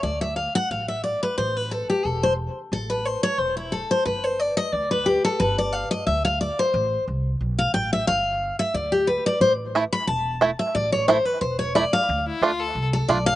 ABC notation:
X:1
M:4/4
L:1/16
Q:"Swing" 1/4=179
K:Am
V:1 name="Steel-string acoustic guitar"
d2 e2 f2 ^f2 =f2 e2 d2 B2 | c2 B2 A2 G2 A2 c2 z4 | A2 B2 c2 ^c2 =c2 E2 A2 c2 | B2 c2 d2 ^d2 =d2 B2 G2 A2 |
B2 d2 f2 ^d2 e2 f2 =d2 c2- | c4 z6 f2 g2 e2 | f6 e2 d2 G2 B2 d2 | c2 z4 b2 a6 e2 |
d2 ^c2 =c2 B2 c2 ^c2 d2 f2- | f2 z8 A2 d2 f2 |]
V:2 name="Fiddle"
z16 | z16 | z16 | z16 |
z16 | z16 | z16 | z16 |
z16 | z2 E2 F2 A3 z6 z |]
V:3 name="Five-string banjo"
z16 | z16 | z16 | z16 |
z16 | z16 | z16 | z4 [A,E]2 z6 [A,E]2 z2 |
z4 [A,E]2 z6 [A,E]2 z2 | z4 [A,DF]2 z6 [A,DF]2 z2 |]
V:4 name="Upright bass" clef=bass
D,,8 A,,,8 | A,,,8 E,,,8 | A,,,8 E,,,8 | G,,,8 D,,8 |
G,,,8 D,,8 | A,,,4 C,,4 B,,,4 A,,,4 | G,,,8 D,,8 | A,,,8 E,,,8 |
A,,,8 E,,,8 | D,,4 D,,4 C,,4 B,,,4 |]